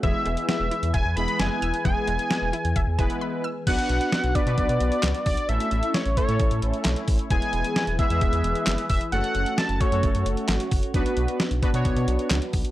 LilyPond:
<<
  \new Staff \with { instrumentName = "Analog synth lead" } { \time 4/4 \key e \mixolydian \tempo 4 = 132 e''4 e''4 gis''8 b''8 gis''4 | gis''2. r4 | fis''4. d''2 d''8 | e''4 cis''8 cis''4 r4. |
gis''4. e''2 e''8 | fis''4 a''8 cis''4 r4. | r1 | }
  \new Staff \with { instrumentName = "Synth arpeggio sound" } { \time 4/4 \key e \mixolydian e8 gis8 b8 e'8 e''8 gis''8 b''8 e'''8 | e8 gis8 b8 e'8 e''8 gis''8 b''8 e'''8 | r1 | r1 |
r1 | r1 | r1 | }
  \new Staff \with { instrumentName = "Analog polysynth" } { \time 4/4 \key e \mixolydian <gis b e' gis'>4. r4 <gis b e' gis'>4 r8 | <gis b e' gis'>4. r4 <gis b e' b'>4 r8 | <b d' fis' b'>4 r8 <b d' fis' b'>16 <b d' fis' b'>4. r8. | <a cis' e' a'>4 r8 <a cis' e' a'>16 <a cis' e' a'>4. r8. |
<gis b e' gis'>4 r8 <gis b e' gis'>16 <gis b e' gis'>4. r8. | <a cis' fis' a'>4 r8 <a cis' fis' a'>16 <a cis' fis' a'>4. r8. | <b d' fis' b'>4 r8 <b d' fis' b'>16 <b d' fis' cis''>4. r8. | }
  \new Staff \with { instrumentName = "Analog synth pad" } { \time 4/4 \key e \mixolydian << { <e b'>1~ | <e b'>1 | fis'1 | e'1 |
<e b'>1 | fis'1~ | fis'1 | } \\ { <e' gis'>1~ | <e' gis'>1 | <b d'>1 | <a cis'>1 |
gis'1 | <a cis'>1 | <b d'>1 | } >> }
  \new Staff \with { instrumentName = "Analog synth bass" } { \clef bass \time 4/4 \key e \mixolydian e,,16 r16 e,,16 r8 e,,16 r16 e,16 e,,16 e,16 e,,16 r16 fis,,16 r16 e,,16 r16 | e,,16 r16 e,,16 r8 e,,16 r16 e,16 e,,16 e,16 e,,16 r4 r16 | b,,16 r16 b,,16 r8 b,,16 r16 b,16 b,,16 b,16 b,,16 r16 cis,16 r16 b,,16 r16 | a,,16 r16 a,,16 r8 a,,16 r16 a,16 a,,16 a,16 a,,16 r16 b,,16 r16 a,,16 r16 |
e,,16 r16 e,,16 r8 e,,16 r16 e,16 e,,16 e,16 e,,16 r16 fis,,16 r16 e,,16 r16 | fis,,16 r16 fis,,16 r8 fis,,16 r16 fis,16 fis,,16 fis,16 fis,,16 r16 gis,,16 r16 fis,,16 r16 | b,,16 r16 b,,16 r8 b,,16 r16 b,16 b,,16 b,16 b,,16 r16 cis,16 r16 b,,16 r16 | }
  \new DrumStaff \with { instrumentName = "Drums" } \drummode { \time 4/4 <hh bd>8 hh16 hh16 <hh sn>8 hh16 hh16 <hh bd>8 hh16 hh16 <hh sn>8 hh16 hh16 | <hh bd>8 hh16 hh16 <hh sn>8 hh16 hh16 <hh bd>8 <hh bd>16 hh16 r4 | <cymc hh bd>16 hh16 hh16 hh16 <hh sn>16 hh16 <hh bd>16 hh16 <hh bd>16 hh16 hh16 hh16 <hc hh sn>16 hh16 <hho bd>16 hh16 | hh16 hh16 hh16 hh16 <hh sn>16 hh16 <hh bd>16 hh16 <hh bd>16 hh16 hh16 hh16 <hc hh sn>16 hh16 <hho bd>16 hh16 |
<hh bd>16 hh16 hh16 hh16 <hh sn>16 hh16 <hh bd>16 hh16 <hh bd>16 hh16 hh16 hh16 <hc hh sn>16 hh16 <hho bd>16 hh16 | hh16 hh16 hh16 hh16 <hh sn>16 hh16 <hh bd>16 hh16 <hh bd>16 hh16 hh16 hh16 <hc hh sn>16 hh16 <hho bd>16 hh16 | <hh bd>16 hh16 hh16 hh16 <hh sn>16 hh16 <hh bd>16 hh16 <hh bd>16 hh16 hh16 hh16 <hc hh sn>16 hh16 <hho bd>16 hh16 | }
>>